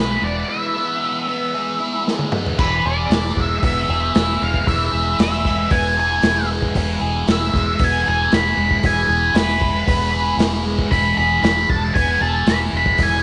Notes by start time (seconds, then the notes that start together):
Already playing: B1 E3 G#3 B3 E4 G#4 B4
0.22 E1 B3 D5
0.48 E3 E5
0.76 B3
1.01 G#3
1.28 B3
1.54 G#4
1.80 E4
2.07 G#3, snare
2.19 high tom
2.32 B3, mid tom
2.46 floor tom
2.59 E1 E3 B4, kick, crash
2.85 E1 G#4 D5
3.10 E1 E4, snare, open hi-hat
3.36 E1 G#3, kick
3.41 E5
3.63 E1 B3 E5, kick, open hi-hat
3.89 E1 G#4
4.15 E1 E4, snare, open hi-hat
4.42 E1 G#3 F5
4.54 kick
4.67 E1 E3 E5, kick, open hi-hat
4.92 E1 G#4
5.19 E1 E4 E5, snare, open hi-hat
5.45 G#3, kick, snare
5.70 E1 B3 G#5, kick, open hi-hat
5.97 G#4 G#5
6.22 E1 E4, snare, open hi-hat
6.49 G#3
6.62 kick
6.74 E1 E3, kick, open hi-hat
7.01 E1 G#4
7.27 E1 E4, snare, open hi-hat
7.31 E5
7.53 E1 G#3, kick, snare
7.58 E5
7.79 E1 B3, kick, open hi-hat
7.84 G#5
8.06 E1 G#4 G#5
8.32 E1 E4 B5, snare, open hi-hat
8.57 E1 G#3
8.71 kick
8.83 E1 E3 G#5, kick, open hi-hat
9.08 E1 G#4
9.34 E1 E4 B4, snare, open hi-hat
9.61 G#3, kick
9.86 E1 B3, kick, open hi-hat
10.12 G#4
10.37 E1 E4, snare, open hi-hat
10.64 G#3
10.79 kick
10.90 E1 E3 B5, kick, open hi-hat
11.17 E1 G#4 B5
11.42 E1 E4 B5, snare, open hi-hat
11.69 E1 G#3 A5, kick
11.94 E1 B3 G#5, kick, open hi-hat
12.21 E1 G#4 A5
12.47 E1 E4 B5, snare, open hi-hat
12.73 E1 G#3
12.77 B5
12.86 kick
12.98 E1 E3, kick, open hi-hat
13.03 G#5